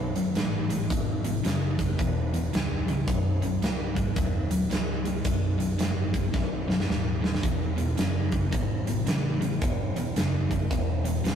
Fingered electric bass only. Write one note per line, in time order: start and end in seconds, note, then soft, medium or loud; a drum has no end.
0.00 0.14 B1 medium
0.16 muted fingered electric bass stroke soft
0.36 0.89 A1 medium
0.91 1.43 G#1 medium
1.45 1.97 F#1 medium
1.99 2.52 E1 medium
2.54 3.06 C#1 medium
3.08 3.61 B0 medium
3.62 4.15 C#1 medium
4.17 4.70 D#1 medium
4.71 5.24 C#1 medium
5.25 5.78 B0 medium
5.80 6.33 F#1 medium
6.34 6.87 B0 medium
6.89 7.42 D#1 medium
7.43 7.96 E1 medium
7.98 8.51 F#1 medium
8.53 9.05 G#1 medium
9.07 9.60 A1 medium
9.62 9.94 G1 medium
9.96 muted fingered electric bass stroke soft
10.16 10.69 F#1 medium
10.71 11.23 E1 medium
11.25 11.35 D1 medium